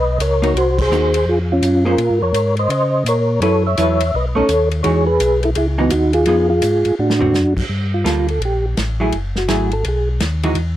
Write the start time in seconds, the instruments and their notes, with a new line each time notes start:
Already playing: tonewheel organ B1 B4 D#5
0.18 tonewheel organ C#2 A#4 C#5, hi-hat pedal, ride
0.42 hollow-body jazz guitar A#3 D#4 F#4, ride
0.54 tonewheel organ C2 F#4, ride
0.58 tonewheel organ C5
0.79 tonewheel organ G#4 C5, kick, crash
0.90 tonewheel organ D#2, hollow-body jazz guitar A#3 D#4 F#4, hi-hat pedal
1.14 ride
1.26 tonewheel organ F2 F4 G#4
1.52 tonewheel organ C#4 F4
1.62 tonewheel organ F#2, hi-hat pedal, ride
1.85 hollow-body jazz guitar A#3 C#4 G#4 C5, tonewheel organ F4 A#4
1.98 tonewheel organ A#2, ride
2.10 tonewheel organ G#2
2.21 tonewheel organ F2 A#4 C#5
2.33 tonewheel organ G#2, hi-hat pedal, ride
2.57 tonewheel organ C5 D#5, ride
2.69 tonewheel organ C#3 C5 D#5, ride
3.05 tonewheel organ A#2 A#4 C#5, hi-hat pedal, ride
3.41 tonewheel organ F#2 A4 C#5, hollow-body jazz guitar F#3 E4 A4 B4, ride
3.67 tonewheel organ C#5 E5
3.77 tonewheel organ E2, hollow-body jazz guitar F#3 E4 A4 B4, hi-hat pedal, ride
4.00 ride
4.14 tonewheel organ B1 B4 D#5
4.35 tonewheel organ B1 A4 C#5, hollow-body jazz guitar A3 C#4 D#4
4.49 tonewheel organ D#2, hi-hat pedal, ride
4.71 ride
4.83 tonewheel organ E2 G#4 C#5, hollow-body jazz guitar E3 G#3 D#4 F#4, ride
5.06 tonewheel organ G#4 B4
5.20 tonewheel organ B1, hi-hat pedal, ride
5.43 tonewheel organ E4 A4, ride
5.55 tonewheel organ C#2 E4 G#4, ride
5.78 hollow-body jazz guitar E3 G#3 D#4 F#4, tonewheel organ B3 D#4
5.90 tonewheel organ D#2 D#4 F#4, hi-hat pedal, ride
6.13 tonewheel organ F4 G#4, ride
6.25 tonewheel organ F2, hollow-body jazz guitar F3 B3 D#4 G#4, ride
6.50 tonewheel organ F4 G#4
6.62 tonewheel organ G#2, hi-hat pedal, ride
6.85 tonewheel organ G#2, ride
6.99 tonewheel organ A2 D4 F#4
7.10 snare
7.19 hollow-body jazz guitar D3 A#3 C4 F#4, floor tom
7.34 tonewheel organ F#2, snare, hi-hat pedal
7.57 tonewheel organ F#2, kick, crash
7.69 tonewheel organ G2
7.94 tonewheel organ F4
8.04 tonewheel organ D2, hollow-body jazz guitar G3 A#3 F4 A4, snare, hi-hat pedal, ride
8.28 tonewheel organ A4, ride
8.40 tonewheel organ A#1, ride
8.45 tonewheel organ G4
8.77 tonewheel organ A1, snare, hi-hat pedal, ride
9.00 hollow-body jazz guitar F#3 A3 E4 G#4
9.12 tonewheel organ F#1, ride
9.36 tonewheel organ F#4, snare
9.48 tonewheel organ G#1, hollow-body jazz guitar F#3 A3 E4 G#4, snare, hi-hat pedal, ride
9.71 tonewheel organ A4, ride
9.84 tonewheel organ B1 G#4, ride
10.20 tonewheel organ D#2, snare, hi-hat pedal, ride
10.43 hollow-body jazz guitar E3 G#3 D#4 F#4, ride
10.55 tonewheel organ E2, ride